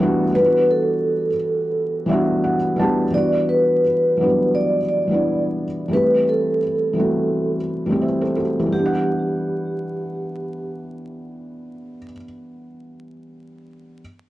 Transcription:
Already playing: E3 A4
0.00 G3 B3 D4 F#4
0.33 E3 G3 B3 B4
0.37 D4 F4
0.46 F#4
0.71 A4
2.06 E3 G3 B3 E5
2.11 D4 F#4
2.44 F#5
2.76 E3 G3 B3 A5
2.81 D4 G4
3.11 E3 G3 B3 D5
3.15 D4 F#4
3.49 B4
4.17 E3 F#3 B3
4.22 G3 D4 F#4
4.55 D5
4.89 D5
5.07 E3 G3 B3
5.12 D4 E4
5.88 E3 G3 A3
5.93 C4 G4 B4
6.29 A4
6.93 E3 G3 A3
6.98 C4 F#4
7.86 E3 G3 A3
7.90 C4 G4
8.02 C5 E5
8.21 A4 C5
8.36 F#4 A4
8.59 E3 E4 G4
8.66 G3
8.72 B3 G4
8.79 D4
8.86 F#5

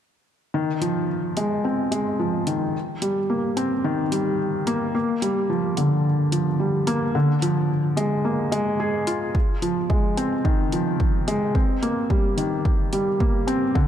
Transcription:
0.54 D#3
0.81 F3, closed hi-hat
1.37 G#3, closed hi-hat
1.64 C4
1.91 G#3, closed hi-hat
2.19 F3
2.47 D#3, closed hi-hat
3.02 G3, closed hi-hat
3.30 A#3
3.57 C4, closed hi-hat
3.84 D#3
4.12 G3, closed hi-hat
4.67 A#3, closed hi-hat
4.95 A#3
5.22 G3, closed hi-hat
5.50 F3
5.77 D3, closed hi-hat
6.32 F3, closed hi-hat
6.60 G3
6.87 A#3, closed hi-hat
7.15 D3
7.42 F3, closed hi-hat
7.97 G#3, closed hi-hat
8.25 A#3
8.52 G#3, closed hi-hat
8.80 G#4
9.07 F4, closed hi-hat
9.35 kick
9.62 F3, closed hi-hat
9.90 G#3, kick
10.17 C4, closed hi-hat
10.45 D#3, kick
10.72 F3, closed hi-hat
11.00 kick
11.28 G#3, closed hi-hat
11.55 C4, kick
11.82 A#3, closed hi-hat
12.10 G3, kick
12.37 D#3, closed hi-hat
12.65 kick
12.93 G3, closed hi-hat
13.20 A#3, kick
13.47 C4, closed hi-hat
13.75 D3, kick

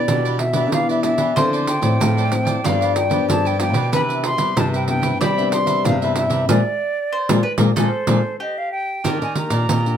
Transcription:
Already playing: B4 D5
0.08 B2 E3 B3 D4 E4 G4 B4 D5, pandeiro
0.25 G4 B4 D5, pandeiro
0.39 E5, muted cavaquinho stroke, pandeiro
0.53 B3 D4 G4 B4 D5, pandeiro
0.72 B2 E3 F5, pandeiro
0.89 G4 B4 D5 E5, pandeiro
1.03 B3 D4 E4 G4 B4 D5 E5, pandeiro
1.18 E3 G4 B4 D5, pandeiro
1.36 D3 F3 C4 E4 F4 A4 C5 D5, pandeiro
1.53 A4 C5 D5, pandeiro
1.67 G5, pandeiro
1.81 A2 F3 C4 E4 A4 C5 D5, pandeiro
2.00 A2 F4 A4 C5 D5, pandeiro
2.17 A4 C5 D5, pandeiro
2.31 F3 C4 E4, muted cavaquinho stroke, pandeiro
2.45 A4 C5 D5, pandeiro
2.64 G2 F3 B3 D4 F4 G4 B4 D5 F5, pandeiro
2.81 G4 B4 D5, pandeiro
2.95 G5, muted cavaquinho stroke, pandeiro
3.10 F3 B3 D4 G4 B4 D5, pandeiro
3.29 G2 D3 A5, pandeiro
3.45 G4 B4 D5 G5, pandeiro
3.59 F3 B3 D4 F4 G4 B4 D5 G5, pandeiro
3.73 B2 G4 B4 D5, pandeiro
3.92 C3 E3 B3 D4 E4 B4 C5 E5 B5, pandeiro
4.09 B4 E5, pandeiro
4.24 C6, pandeiro
4.37 G3 B4 C5 E5, pandeiro
4.56 G2 C3 E3 B3 D4 E4 B4 C5 E5 A5, pandeiro
4.73 B4 C5 E5 G5, pandeiro
4.87 E3 B3 D4 G5, muted cavaquinho stroke, pandeiro
5.02 B4 C5 E5, pandeiro
5.20 C3 G3 E4 B4 C5 D5 E5 B5, pandeiro
5.38 E3 B3 D4 B4 C5 E5, pandeiro
5.52 C6, muted cavaquinho stroke, pandeiro
5.66 B4 C5 E5, pandeiro
5.85 G2 C3 E3 B3 D4 F5, pandeiro
6.02 E3 B3 D4 B4 C5 E5, pandeiro
6.15 E4 B4 C5 E5, pandeiro
6.30 C3 B4 C5 E5, pandeiro
6.49 A#2 F3 G#3 A#3 G#4 A#4 D5, pandeiro
7.12 C5
7.29 A#2 F3 G#3 A#3 G#4 A#4 D5, pandeiro
7.43 B4
7.58 A#2 F3 G#3 A#3 G#4 A#4 D5, pandeiro
7.76 A#2 F3 G#3 A#3 G#4 A4 A#4 C5 D5, pandeiro
8.07 A#2 F3 G#3 A#3 G#4 A#4 D5, pandeiro
8.40 G4 D#5
8.58 F5
8.72 G5
9.04 D#3 A#3 D4 G4 A#4 D5 D#5, pandeiro
9.21 D#3 G4 D5 D#5 G#5, pandeiro
9.35 A#3 D4 G4 A#5, muted cavaquinho stroke, pandeiro
9.50 A#2 G4 D5 D#5, pandeiro
9.69 A#2 G4 D5 D#5, pandeiro
9.86 A#3 D4 G4, pandeiro

